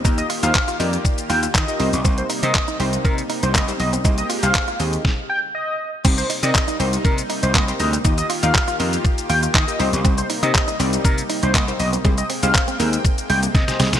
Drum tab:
CC |----------------|----------------|----------------|x---------------|
HH |-xox-xox-xox-xox|-xox-xox-xox-xox|-xox-xox--------|-xox-xox-xox-xox|
SH |xxxxxxxxxxxxxxxx|xxxxxxxxxxxxxxxx|xxxxxxxx--------|xxxxxxxxxxxxxxxx|
CP |----x-------x---|----x-------x---|----x-----------|----x-------x---|
SD |----------------|----------------|--------o-------|----------------|
BD |o---o---o---o---|o---o---o---o---|o---o---o-------|o---o---o---o---|

CC |----------------|----------------|----------------|
HH |-xox-xox-xox-xox|-xox-xox-xox-xox|-xox-xox-xox-xox|
SH |xxxxxxxxxxxxxxxx|xxxxxxxxxxxxxxxx|xxxxxxxxxxxxxxxx|
CP |----x-------x---|----x-------x---|----x-----------|
SD |----------------|----------------|------------oooo|
BD |o---o---o---o---|o---o---o---o---|o---o---o---o---|